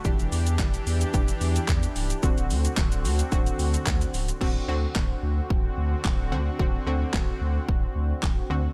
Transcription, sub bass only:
\new Staff \with { instrumentName = "Sub bass" } { \clef bass \time 4/4 \key d \mixolydian \tempo 4 = 110 e,,16 e,,16 e,8 e,,8 e,8 e,,8 e,8 e,8 cis,,8 | d,,16 d,,16 d,8 d,,8 d,8 d,,8 d,8 d,8 cis,,8 | d,,8 d,8 d,,8 d,8 d,,8 d,8 d,,8 d,8 | d,,8 d,8 d,,8 d,8 d,,8 d,8 d,,8 d,8 | }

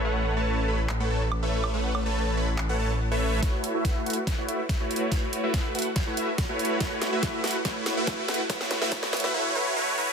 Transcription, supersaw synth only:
\new Staff \with { instrumentName = "Supersaw synth" } { \time 4/4 \key a \major \tempo 4 = 142 <a a' b' cis'' fis''>8. <a a' b' cis'' a''>8. <a a' b' cis'' b''>16 r8 <a a' b' cis'' fis''>16 <a a' b' cis'' a''>16 r8 <a a' b' cis'' e''>8. | <a a' b' cis'' fis''>8. <a a' b' cis'' a''>8. <a a' b' cis'' b''>16 r8 <a a' b' cis'' fis''>16 <a a' b' cis'' a''>16 r8 <a a' b' cis'' e''>8. | <a e' fis' b' cis''>8. <a e' fis' b' e''>8. <a e' fis' b' fis''>16 r8 <a e' fis' b' cis''>16 <a e' fis' b' e''>16 r8 <a e' fis' b' cis''>8. | <a e' fis' b' cis''>8. <a e' fis' b' e''>8. <a e' fis' b' fis''>16 r8 <a e' fis' b' cis''>16 <a e' fis' b' e''>16 r8 <a e' fis' b' cis''>8. |
<a e' fis' b' cis''>8. <a e' fis' b' e''>8. <a e' fis' b' fis''>16 r16 <a e' fis' b' cis''>8. <a e' fis' b' e''>8. <a e' fis' b' fis''>16 r16 | <a e' fis' b' cis''>8. <a e' fis' b' e''>16 <a e' fis' b' cis''>8. <a e' fis' b' e''>16 <a e' fis' b' cis''>8 <a e' fis' b' cis''>8 <a e' fis' b' cis''>8 <a e' fis' b' cis''>8 | }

